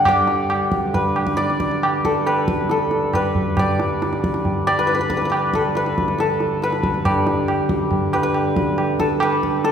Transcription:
Already playing: F#5
0.05 G2 D3 D5, tabla na, tabla ge
0.27 tabla te
0.50 tabla na
0.72 tabla ke
0.94 B4, tabla tin, tabla ge
1.16 tabla na
1.27 tabla ke
1.37 D5, tabla te
1.50 tabla te
1.60 tabla ke
1.71 tabla te
1.83 tabla na
2.05 A4, tabla ke
2.27 B4, tabla na
2.48 tabla ke
2.70 A4, tabla te
2.91 tabla te
3.13 B4, tabla na, tabla ge
3.35 tabla ge
3.57 D5, tabla na, tabla ge
3.80 tabla te
4.02 tabla te
4.13 tabla te
4.24 tabla ke
4.34 tabla te
4.45 tabla tin, tabla ge
4.67 D5, tabla na
4.79 B4
4.87 B4, tabla te
4.95 B4
4.99 B4, tabla te
5.10 B4, tabla ke
5.17 B4
5.22 B4, tabla te
5.30 B4, tabla na
5.54 A4, tabla ke
5.75 B4, tabla te
5.86 tabla te
5.98 tabla ke
6.08 tabla te
6.19 A4, tabla te
6.40 tabla te
6.62 B4, tabla te
6.72 tabla te
6.83 tabla ke
6.94 tabla te
7.04 G2 D3 D5, tabla na, tabla ge
7.27 tabla te
7.48 tabla na
7.69 tabla ke
7.91 tabla tin, tabla ge
8.13 B4, tabla na
8.23 B4
8.34 tabla na
8.57 tabla ke
8.78 tabla na
9.00 A4, tabla ke
9.20 B4, tabla na
9.43 tabla ke
9.64 A4, tabla te

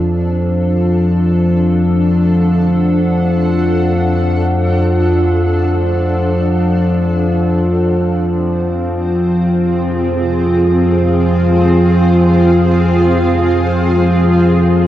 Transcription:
Already playing: F2 F3 D4 A4
1.40 F#5
7.02 C4
7.60 F4
8.59 G#4
9.89 F5

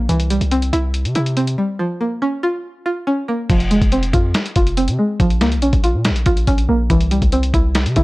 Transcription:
0.09 C2 E3, closed hi-hat
0.20 closed hi-hat
0.30 G3, closed hi-hat
0.41 C2, closed hi-hat
0.51 C4, closed hi-hat
0.62 closed hi-hat
0.73 C2 E4, closed hi-hat
0.94 closed hi-hat
1.05 C3, closed hi-hat
1.15 C3 E4, closed hi-hat
1.26 closed hi-hat
1.37 C4, closed hi-hat
1.47 closed hi-hat
1.58 G3
1.79 F3
2.01 A#3
2.22 C#4
2.43 F4
2.86 F4
3.07 C#4
3.28 A#3
3.50 F1 F3, kick, closed hi-hat, crash
3.60 closed hi-hat
3.71 G#3, closed hi-hat
3.82 F1, kick, closed hi-hat
3.92 C4, closed hi-hat
4.03 closed hi-hat
4.13 F2 F4, kick, closed hi-hat
4.34 snare, closed hi-hat
4.46 closed hi-hat
4.56 F1 F4, kick, closed hi-hat
4.67 closed hi-hat
4.77 C4, closed hi-hat
4.88 C3, closed hi-hat
4.99 G#3
5.20 A#1 F3, kick, closed hi-hat
5.30 closed hi-hat
5.41 C#2 A#3, snare, closed hi-hat
5.52 closed hi-hat
5.57 A#1
5.62 C#4, closed hi-hat
5.73 A#1, kick, closed hi-hat
5.84 F4, closed hi-hat
5.94 A#2
6.05 snare, closed hi-hat
6.10 A#1
6.16 closed hi-hat
6.26 A#1 F4, kick, closed hi-hat
6.37 closed hi-hat
6.47 A#1 C#4, kick, closed hi-hat
6.58 closed hi-hat
6.69 A#1 A#3
6.90 C2 E3, kick, closed hi-hat
7.01 closed hi-hat
7.11 G3, closed hi-hat
7.22 C2, kick, closed hi-hat
7.32 C4, closed hi-hat
7.43 closed hi-hat
7.54 C2 E4, kick, closed hi-hat
7.75 snare, closed hi-hat
7.86 C3, closed hi-hat
7.96 C3 E4, kick, closed hi-hat

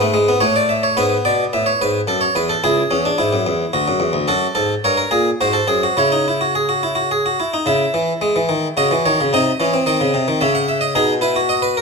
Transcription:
Already playing: G#2 B4
0.01 A3
0.14 G#3
0.28 B3
0.40 A2 A3 C#5
0.56 D5
0.69 E5
0.83 C#5
0.97 G#2 B3 B4
1.25 B2 D5
1.53 A2 E5
1.66 C#5
1.81 G#2 B4
2.07 F#2 A4
2.21 C#5
2.35 E2 B4
2.49 A4
2.64 C#2 E4 G#4
2.91 E2 C#4
3.05 D4
3.18 G#2 E4
3.33 F#2
3.46 E2
3.73 D2 F#4
3.88 F#2
4.00 E2
4.13 D2
4.28 F#2 F#4 A4
4.55 G#2 A4
4.84 G2 A#4 C#5
4.97 A#4
5.11 A#2 G#4
5.41 G#2 F#4 C5
5.53 A4
5.68 F#2 G#4
5.83 F#4
5.97 C#3 E4 C#5
6.12 D#4
6.28 E4
6.41 F#4
6.55 G#4
6.69 F#4
6.83 E4
6.95 F#4
7.11 G#4
7.26 F#4
7.40 E4
7.53 D#4
7.66 C#3 E4 E5
7.94 E3
8.21 G#3
8.36 E3
8.49 D#3
8.77 C#3 F#4 D#5
8.91 E3
9.05 D#3 C#5
9.21 C#3
9.33 C3 D#4 D#5
9.60 E3 C#4
9.74 C4
9.86 D#3 D#5
10.00 C#3
10.14 C3
10.28 D#3
10.41 C#3 C#4 E5
10.55 F#5
10.69 E5
10.81 D#5
10.95 B2 D#4 G#4
11.21 E4 B4
11.36 F#4
11.49 D#5
11.62 B4
11.77 A#4

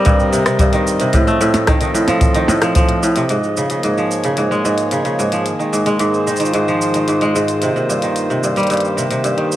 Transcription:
Already playing: G3 C4 A#4 D#5
0.05 G2, kick, closed hi-hat, shaker
0.20 shaker
0.32 C3, shaker
0.46 C3, cross-stick, closed hi-hat, shaker
0.59 G2, kick, closed hi-hat, shaker
0.73 D#3, closed hi-hat, shaker
0.87 shaker
1.00 C3, closed hi-hat, shaker
1.13 A2 F3, kick, closed hi-hat, shaker
1.27 A3, shaker
1.41 A2 A4, shaker
1.54 closed hi-hat, percussion blips, shaker
1.67 D#3, kick, cross-stick, closed hi-hat, shaker
1.81 D#3, closed hi-hat, shaker
1.94 A2, shaker
2.08 F3, closed hi-hat, percussion blips, shaker
2.21 kick, closed hi-hat, shaker
2.35 D#3, closed hi-hat, shaker
2.48 A2, percussion blips, shaker
2.62 F3, cross-stick, closed hi-hat, shaker
2.75 F3, kick, closed hi-hat, shaker
2.89 closed hi-hat
3.03 A2, shaker
3.16 C3, closed hi-hat, shaker
3.29 G#2, closed hi-hat, shaker
3.43 shaker
3.57 C#3, shaker
3.70 C#3, closed hi-hat, shaker
3.76 A#3
3.83 G#2, closed hi-hat, shaker
3.90 C#5
3.98 F3 G#4, shaker
4.11 shaker
4.24 C#3, closed hi-hat, shaker
4.37 G#2, closed hi-hat, shaker
4.51 G#3, shaker
4.65 G#2, shaker
4.78 closed hi-hat, shaker
4.91 C#3, closed hi-hat, shaker
5.05 C#3, closed hi-hat, shaker
5.19 G#2, shaker
5.32 F3, closed hi-hat, shaker
5.45 D#3, closed hi-hat, shaker
5.59 D#3 G#3, shaker
5.73 G#2, shaker
5.86 G#3, closed hi-hat, shaker
5.99 G#2, closed hi-hat, shaker
6.12 C5, shaker
6.27 D#3, shaker
6.36 D#3, closed hi-hat, shaker
6.41 F4, shaker
6.45 shaker
6.54 G#2, closed hi-hat, shaker
6.68 F3, shaker
6.81 shaker
6.94 D#3, closed hi-hat, shaker
7.08 G#2, closed hi-hat, shaker
7.21 G#3, closed hi-hat, shaker
7.35 G#2, shaker
7.48 closed hi-hat, shaker
7.62 C3, closed hi-hat, shaker
7.72 C3 A#3
7.76 shaker
7.89 G2, shaker
8.02 D#3, closed hi-hat, shaker
8.16 closed hi-hat, shaker
8.30 C3, shaker
8.44 G2, shaker
8.56 G3 G4, closed hi-hat, shaker
8.60 closed hi-hat
8.63 closed hi-hat
8.67 closed hi-hat
8.70 G2, closed hi-hat, shaker
8.74 closed hi-hat
8.77 closed hi-hat
8.80 closed hi-hat
8.85 shaker
8.97 C3, shaker
9.11 C3, closed hi-hat, shaker
9.24 G2, closed hi-hat, shaker
9.37 D#3, closed hi-hat
9.52 shaker

